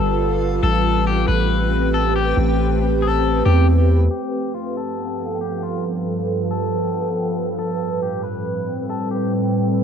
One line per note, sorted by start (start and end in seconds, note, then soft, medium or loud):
0.00 0.60 G1 loud
0.00 0.60 G3 medium
0.00 0.60 B3 medium
0.00 0.60 F4 medium
0.00 0.59 A4 medium
0.00 0.60 A4 medium
0.00 0.59 B4 medium
0.00 0.60 F5 loud
0.63 1.26 A1 loud
0.63 4.07 A3 medium
0.63 4.07 C4 medium
0.63 4.07 C4 loud
0.63 4.07 G4 medium
0.63 1.04 A4 loud
0.63 4.07 B4 medium
0.63 4.07 G5 loud
1.07 1.27 G4 medium
1.28 2.33 A1 loud
1.28 1.89 B4 medium
1.94 2.14 A4 medium
2.16 2.36 G4 medium
2.37 3.42 A1 loud
3.02 3.43 A4 medium
3.45 4.08 E2 loud
3.45 3.66 G4 medium
4.11 7.55 G2 medium
4.11 7.55 F3 medium
4.11 7.55 B3 medium
4.11 4.52 G4 loud
4.11 7.55 A4 medium
4.11 9.84 B4 medium
4.11 7.55 F5 medium
4.11 9.84 G5 medium
4.54 4.75 F4 medium
4.77 5.38 A4 medium
5.41 5.62 G4 medium
5.63 5.83 F4 medium
6.51 7.55 A4 medium
7.59 9.84 A2 medium
7.59 9.84 G3 medium
7.59 9.84 C4 medium
7.59 8.00 A4 loud
7.59 9.84 A4 medium
7.59 9.84 B4 medium
8.03 8.23 G4 medium
8.24 8.85 B4 medium
8.90 9.10 A4 medium
9.11 9.32 G4 medium